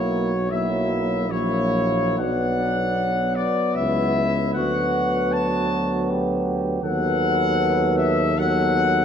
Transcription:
Already playing: B1 F#3 A#3 E4 C#5
0.50 F#3 A#3 E4 E5
1.28 A#1 F#3 A#3 E4 C#5
2.18 B1 F#3 B3 D4 F#5
3.35 D5
3.74 C#2 E4 E5
4.54 D2 F#3 B3 F#4 F#5
5.32 A5
6.10 G4
6.83 D#2 F#3 B3 A4 F#5
7.97 E5
8.38 F#3 B3 A4 F#5

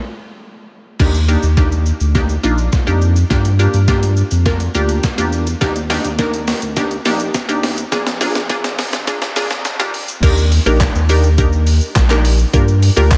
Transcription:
0.99 D#2 A#3 D4 D#4 G4, kick, snare, crash, shaker
1.14 shaker
1.28 A#3 D4 D#4 G4, shaker
1.43 D#2, shaker
1.57 A#3 D4 D#4 G4, kick, snare, shaker
1.72 shaker
1.86 shaker
2.00 D2, shaker
2.15 A#3 D4 D#4 G4, kick, snare, shaker
2.29 shaker
2.43 A#1 A#3 D4 D#4 F4, shaker
2.58 shaker
2.72 kick, snare, shaker
2.87 F2 A#3 D4 D#4 G4, shaker
3.02 shaker
3.16 shaker
3.30 G2 A#3 D4 F4 G4, kick, snare, closed hi-hat, shaker
3.45 closed hi-hat, shaker
3.59 A#3 D4 F4 G4, shaker
3.74 G2, closed hi-hat, shaker
3.88 A#3 D4 F4 G4, kick, snare, closed hi-hat, shaker
4.03 closed hi-hat, shaker
4.17 shaker
4.31 F2, closed hi-hat, shaker
4.46 A#3 D4 F4 A#4, kick, snare, closed hi-hat, shaker
4.60 closed hi-hat, shaker
4.74 D2 A#3 D4 F4 G4, shaker
4.89 closed hi-hat, shaker
5.03 kick, snare, closed hi-hat, shaker
5.18 E2 A#3 D4 F4 G4, closed hi-hat, shaker
5.33 shaker
5.47 closed hi-hat, shaker
5.61 D#2 A#3 D4 D#4 G4, kick, snare, closed hi-hat, shaker
5.76 closed hi-hat, shaker
5.90 A#3 D4 D#4 G4, snare, open hi-hat, shaker
6.05 D#2, closed hi-hat, shaker
6.19 A#3 D4 D#4 A#4, kick, snare, closed hi-hat, shaker
6.34 closed hi-hat, shaker
6.48 snare, open hi-hat, shaker
6.62 D2, closed hi-hat, shaker
6.76 A#3 D4 D#4 G4, kick, snare, closed hi-hat, shaker
6.91 closed hi-hat, shaker
7.05 A#1 A#3 D4 D#4 G4, snare, open hi-hat, shaker
7.20 closed hi-hat, shaker
7.34 kick, snare, closed hi-hat, shaker
7.48 D#2 A#3 D4 D#4 G4, closed hi-hat, shaker
7.63 snare, open hi-hat, shaker
7.78 closed hi-hat, shaker
7.92 A#1 A#3 D4 F4 G#4, kick, snare, closed hi-hat, shaker
8.07 snare, closed hi-hat, shaker
8.21 A#3 D4 F4 G#4, snare, open hi-hat, shaker
8.35 A#1, snare, closed hi-hat, shaker
8.49 A#3 D4 F4 G#4, kick, snare, closed hi-hat, shaker
8.64 snare, closed hi-hat, shaker
8.79 snare, open hi-hat, shaker
8.93 G#1, snare, closed hi-hat, shaker
9.07 A#3 D4 F4 G#4, kick, snare, closed hi-hat, shaker
9.22 snare, closed hi-hat, shaker
9.36 F2 A#3 D4 F4 G#4, snare, open hi-hat, shaker
9.50 snare, closed hi-hat, shaker
9.65 snare, closed hi-hat, shaker
9.79 G#2 A#3 D4 F4 G4, snare, closed hi-hat, shaker
9.94 G2, open hi-hat, shaker
10.08 F2, closed hi-hat, shaker
10.23 D#2 A#3 D4 D#4 G4 A#4, kick, closed hi-hat, crash, shaker
10.37 shaker
10.52 open hi-hat, shaker
10.66 A#1 A#3 D4 D#4 G4 A#4, shaker
10.80 kick, snare, clap, closed hi-hat, shaker
10.95 D#2, shaker
11.09 A#3 D4 D#4 G4 A#4, open hi-hat, shaker
11.24 shaker
11.38 A#3 D4 D#4 G4 A#4, kick, closed hi-hat, shaker
11.53 shaker
11.67 open hi-hat, shaker
11.81 shaker
11.96 A#1, kick, snare, clap, closed hi-hat, shaker
12.10 A#3 D4 D#4 G4 A#4, clap, shaker
12.25 open hi-hat, shaker
12.39 shaker
12.53 G2 A#3 D4 F4 G4 A#4, kick, closed hi-hat, shaker
12.68 shaker
12.83 open hi-hat, shaker
12.97 D2 A#3 D4 F4 G4 A#4, shaker
13.11 kick, snare, clap, closed hi-hat, shaker

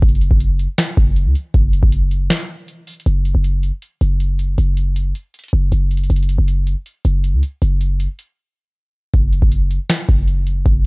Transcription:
0.02 F#1, kick, closed hi-hat
0.09 closed hi-hat
0.15 closed hi-hat
0.21 closed hi-hat
0.31 F#1, kick
0.40 closed hi-hat
0.59 closed hi-hat
0.78 snare, closed hi-hat
0.97 F#1, kick, closed hi-hat
1.16 closed hi-hat
1.26 C#2
1.35 closed hi-hat
1.54 F#1, kick, closed hi-hat
1.73 closed hi-hat
1.83 F#1, kick
1.92 closed hi-hat
2.11 closed hi-hat
2.30 snare, closed hi-hat
2.68 closed hi-hat
2.87 closed hi-hat, open hi-hat
2.94 closed hi-hat
3.00 closed hi-hat
3.06 F#1, closed hi-hat
3.25 closed hi-hat
3.35 F#1
3.44 closed hi-hat
3.63 closed hi-hat
3.82 closed hi-hat
4.01 F#1, closed hi-hat
4.20 closed hi-hat
4.39 closed hi-hat
4.58 F#1, closed hi-hat
4.77 closed hi-hat
4.96 closed hi-hat
5.15 closed hi-hat
5.34 closed hi-hat
5.39 closed hi-hat
5.44 closed hi-hat
5.48 closed hi-hat
5.53 F#1
5.72 F#1, closed hi-hat
5.91 closed hi-hat
5.97 closed hi-hat
6.04 closed hi-hat
6.10 F#1, closed hi-hat
6.16 closed hi-hat
6.23 closed hi-hat
6.29 closed hi-hat
6.38 F#1
6.48 closed hi-hat
6.67 closed hi-hat
6.86 closed hi-hat
7.05 F#1, closed hi-hat
7.24 closed hi-hat
7.33 C#2
7.43 closed hi-hat
7.62 F#1, closed hi-hat
7.81 closed hi-hat
8.00 closed hi-hat
8.19 closed hi-hat
9.14 F#1, kick, closed hi-hat
9.33 closed hi-hat
9.42 F#1, kick
9.52 closed hi-hat
9.71 closed hi-hat
9.90 snare, closed hi-hat
10.09 F#1, kick, closed hi-hat
10.28 closed hi-hat
10.47 closed hi-hat
10.66 F#1, kick, closed hi-hat

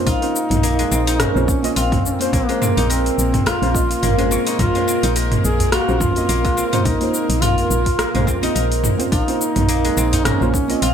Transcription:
Already playing: A#2 G#3 A#3 C4 C#4 D#4 F4 A#4 C5
0.06 A#1 D#4 F4, kick, open hi-hat, shaker
0.21 A#3 C4 C#4 F4 C5, open hi-hat, shaker
0.36 shaker
0.50 A#1, mid tom, open hi-hat, shaker
0.63 A#3, open hi-hat, shaker
0.79 G#3, open hi-hat, shaker
0.91 A#1 C4, shaker
1.07 D#4, open hi-hat, shaker
1.20 C#4 A#4, cross-stick, mid tom, open hi-hat, shaker
1.34 A#1 A#3 C4 C#4 F4 C5, shaker
1.48 kick, shaker
1.63 A#3 C4 F4 D#5, open hi-hat, shaker
1.76 A#1 C4 F4, open hi-hat, shaker
1.92 kick, mid tom, open hi-hat, shaker
2.05 C#4, shaker
2.13 C4
2.20 A#3 C4 C#4 F4 C5, open hi-hat, shaker
2.33 A#1 A#3, kick, open hi-hat, shaker
2.48 G#3 A#3 C4 C#4 F4 C5, open hi-hat, shaker
2.62 C4, mid tom, shaker
2.77 A#1 D#4, open hi-hat, shaker
2.90 C4 A#4, open hi-hat, shaker
3.06 open hi-hat, shaker
3.18 A#1, shaker
3.34 kick, mid tom, open hi-hat, shaker
3.46 F4, cross-stick, open hi-hat, shaker
3.61 A#1 A#3 C4 C#4 F4 C5, open hi-hat, shaker
3.74 A#3 C4 C#4 F4 D#5, kick, shaker
3.91 open hi-hat, shaker
4.03 G#1 A#3, mid tom, open hi-hat, shaker
4.17 G#3 A#3 C4 C#4 F4 C5, open hi-hat, shaker
4.30 A#3 C4 F4 C#6, shaker
4.47 D#4, open hi-hat, shaker
4.59 A#1 A#3 F4, kick, mid tom, open hi-hat, shaker
4.75 G#3 A#3 C4 C#4 F4 C5, open hi-hat, shaker
4.88 C4, shaker
5.03 A#1 D#4, open hi-hat, shaker
5.16 A#4, open hi-hat, shaker
5.32 mid tom, open hi-hat, shaker
5.44 A#1 G#4, shaker
5.60 open hi-hat, udu, shaker
5.72 F4 F#4, cross-stick, open hi-hat, shaker
5.87 A#1 A#3 C4 C#4 F4 C5, shaker
6.00 F4, kick, mid tom, shaker
6.16 A#3 C4 C#4 F4 D#5, open hi-hat, shaker
6.29 A#1 A#3, open hi-hat, shaker
6.44 G#3, kick, open hi-hat, shaker
6.57 C4, shaker
6.72 A#3 C4 C#4 D#4 F4 C5, mid tom, open hi-hat, shaker
6.85 A#1 D#4 A#4, kick, open hi-hat, shaker
7.01 A#3 C4 C#4 F4 C5, open hi-hat, shaker
7.14 shaker
7.29 A#1, open hi-hat, shaker
7.41 F4, mid tom, open hi-hat, shaker
7.58 open hi-hat, shaker
7.70 A#1, shaker
7.86 kick, open hi-hat, udu, shaker
7.99 A#3, cross-stick, open hi-hat, shaker
8.14 A#1 G#3 A#3 C4 C#4 F4 C5, mid tom, open hi-hat, shaker
8.27 C4, kick, shaker
8.41 A#3 C4 D#4 F4 D#5, open hi-hat, shaker
8.55 A#1 A#4, open hi-hat, shaker
8.72 open hi-hat, shaker
8.84 mid tom, shaker
8.98 A#3 C4 C#4 F4 C5, open hi-hat, udu, shaker
9.12 A#1 D#4 F4, kick, open hi-hat, shaker
9.27 A#3 C4 C#4 F4 C5, open hi-hat, shaker
9.41 shaker
9.56 A#1, mid tom, open hi-hat, shaker
9.69 A#3, open hi-hat, shaker
9.85 G#3, open hi-hat, shaker
9.97 A#1 C4, shaker
10.13 D#4, open hi-hat, udu, shaker
10.25 C#4 A#4, cross-stick, mid tom, open hi-hat, shaker
10.41 A#1 A#3 C4 C#4 F4 C5, shaker
10.54 kick, shaker
10.68 A#3 C4 F4 D#5, open hi-hat, shaker
10.81 A#1 C4 F4, open hi-hat, shaker

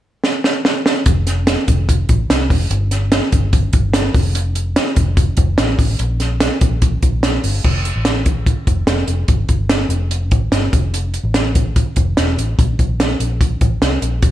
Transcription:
0.24 snare
0.44 snare
0.65 snare
0.86 snare
1.06 F1, kick, closed hi-hat
1.27 snare, closed hi-hat
1.47 snare, closed hi-hat
1.68 F1, kick, closed hi-hat
1.89 kick, closed hi-hat
2.09 A1, kick, closed hi-hat
2.29 C2, snare, closed hi-hat
2.50 F1, kick, open hi-hat
2.70 G1, closed hi-hat
2.91 snare, closed hi-hat
3.12 snare, closed hi-hat
3.32 G1, kick, closed hi-hat
3.53 kick, closed hi-hat
3.73 G1, kick, closed hi-hat
3.94 snare, closed hi-hat
4.14 F1, kick, open hi-hat
4.35 closed hi-hat
4.55 closed hi-hat
4.76 snare, closed hi-hat
4.96 F1, kick, closed hi-hat
5.17 kick, closed hi-hat
5.37 F1, kick, closed hi-hat
5.58 A1, snare, closed hi-hat
5.79 A1, kick, open hi-hat
5.99 A#1, closed hi-hat
6.20 snare, closed hi-hat
6.40 snare, closed hi-hat
6.61 A#1, kick, closed hi-hat
6.82 kick, closed hi-hat
7.02 A#1, kick, closed hi-hat
7.23 snare, closed hi-hat
7.44 G1, open hi-hat
7.64 F1, kick, crash
7.85 closed hi-hat
7.96 A1
8.05 snare, closed hi-hat
8.26 kick, closed hi-hat
8.46 kick, closed hi-hat
8.67 F1, kick, closed hi-hat
8.87 F1, snare, closed hi-hat
9.08 F1, closed hi-hat
9.28 G1, kick, closed hi-hat
9.49 G1, kick, closed hi-hat
9.69 snare, closed hi-hat
9.89 F1, closed hi-hat
10.11 closed hi-hat
10.31 A1, kick, closed hi-hat
10.52 G1, snare, closed hi-hat
10.73 F1, kick, closed hi-hat
10.94 closed hi-hat
11.14 closed hi-hat
11.24 A1
11.34 snare, closed hi-hat
11.55 kick, closed hi-hat
11.76 kick, closed hi-hat
11.96 F1, kick, closed hi-hat
12.17 E1, snare, closed hi-hat
12.38 A1, closed hi-hat
12.59 A#1, kick, closed hi-hat
12.79 A#1, kick, closed hi-hat
13.00 snare, closed hi-hat
13.20 A#1, closed hi-hat
13.41 kick, closed hi-hat
13.61 A1, kick, closed hi-hat
13.82 C2, snare, closed hi-hat
14.02 A#1, closed hi-hat
14.22 F1, kick, closed hi-hat

